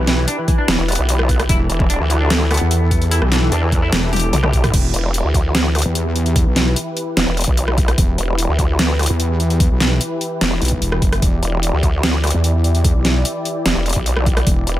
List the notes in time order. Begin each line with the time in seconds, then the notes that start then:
Already playing: B1 E3 E4 G4 B4
0.07 E3, snare, closed hi-hat
0.18 E3
0.28 D4, closed hi-hat
0.38 E3
0.48 E3, kick, closed hi-hat
0.58 D4
0.68 E1 E3, snare, closed hi-hat
0.79 E1 E3
0.88 B3, closed hi-hat
0.92 closed hi-hat
0.95 B1, closed hi-hat
1.09 closed hi-hat
1.19 cross-stick
1.29 kick, closed hi-hat
1.40 cross-stick, closed hi-hat
1.49 E1 E4 A4, kick, closed hi-hat
1.60 E3
1.69 E1 E3, closed hi-hat
1.80 E3, kick
1.90 D4, closed hi-hat
2.00 D2 E3
2.10 E3, closed hi-hat
2.21 D4
2.30 E3, snare, closed hi-hat
2.41 E3
2.51 B3, cross-stick, closed hi-hat
2.54 closed hi-hat
2.57 E2, closed hi-hat
2.71 closed hi-hat
2.91 kick, closed hi-hat
3.02 closed hi-hat
3.11 E4, closed hi-hat
3.22 B1 E3, cross-stick
3.32 E3, snare, closed hi-hat
3.42 E3
3.52 E2 D4, closed hi-hat
3.62 E3
3.72 E3, kick, closed hi-hat
3.83 E4
3.92 E1 E3, snare, closed hi-hat
4.03 E3
4.13 G4, closed hi-hat, high tom
4.16 closed hi-hat
4.20 closed hi-hat
4.33 B1, closed hi-hat, mid tom
4.43 cross-stick, mid tom
4.53 kick, closed hi-hat
4.64 cross-stick, closed hi-hat, mid tom
4.74 E1 E3 E4 G4 B4, kick, closed hi-hat, crash
4.94 E1, closed hi-hat
5.14 closed hi-hat
5.25 D2
5.34 kick, closed hi-hat
5.55 snare, closed hi-hat
5.75 cross-stick, closed hi-hat
5.79 closed hi-hat
5.82 E2, closed hi-hat
5.95 closed hi-hat
6.16 closed hi-hat
6.26 closed hi-hat
6.36 kick, closed hi-hat
6.46 B1
6.56 snare, closed hi-hat
6.76 closed hi-hat
6.97 closed hi-hat
7.17 E1, snare, closed hi-hat
7.27 E1
7.37 closed hi-hat
7.41 closed hi-hat
7.44 B1, kick, closed hi-hat
7.57 closed hi-hat
7.68 cross-stick
7.78 kick, closed hi-hat
7.88 cross-stick, closed hi-hat
7.98 E1, kick, closed hi-hat
8.18 E1, closed hi-hat
8.38 closed hi-hat
8.49 D2
8.59 kick, closed hi-hat
8.79 snare, closed hi-hat
8.99 cross-stick, closed hi-hat
9.03 closed hi-hat
9.06 E2, closed hi-hat
9.20 closed hi-hat
9.40 closed hi-hat
9.50 closed hi-hat
9.60 kick, closed hi-hat
9.71 B1
9.80 snare, closed hi-hat
10.01 closed hi-hat
10.21 closed hi-hat
10.41 E1, snare, closed hi-hat
10.61 B1, closed hi-hat
10.65 closed hi-hat
10.68 kick, closed hi-hat
10.82 E1, closed hi-hat
10.92 cross-stick
11.02 F#1, kick, closed hi-hat
11.12 cross-stick, closed hi-hat
11.22 E1 D5, kick, closed hi-hat
11.43 E1, closed hi-hat
11.63 closed hi-hat
11.73 D2
11.83 kick, closed hi-hat
12.03 snare, closed hi-hat
12.24 cross-stick, closed hi-hat
12.27 closed hi-hat
12.30 E2, closed hi-hat
12.44 closed hi-hat
12.64 closed hi-hat
12.75 closed hi-hat
12.84 kick, closed hi-hat
12.95 B1
13.05 snare, closed hi-hat
13.25 closed hi-hat
13.45 closed hi-hat
13.66 E1, snare, closed hi-hat
13.76 E1
13.86 closed hi-hat
13.89 closed hi-hat
13.93 B1, kick, closed hi-hat
14.06 closed hi-hat
14.17 cross-stick
14.26 kick, closed hi-hat
14.37 cross-stick, closed hi-hat
14.47 E1, kick, closed hi-hat
14.67 E1, closed hi-hat